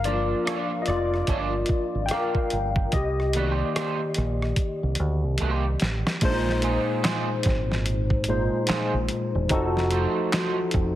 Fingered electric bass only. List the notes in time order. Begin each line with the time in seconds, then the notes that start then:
Already playing: G1
0.88 F1
1.28 G1
1.95 G#1
2.53 G1
2.94 C2
4.18 A#1
4.83 C2
5.00 D2
5.24 C2
5.41 C2
5.82 A1
6.22 A#1
7.46 G#1
8.69 muted fingered electric bass stroke
8.94 A#1
9.35 E1
9.51 F1
10.75 F1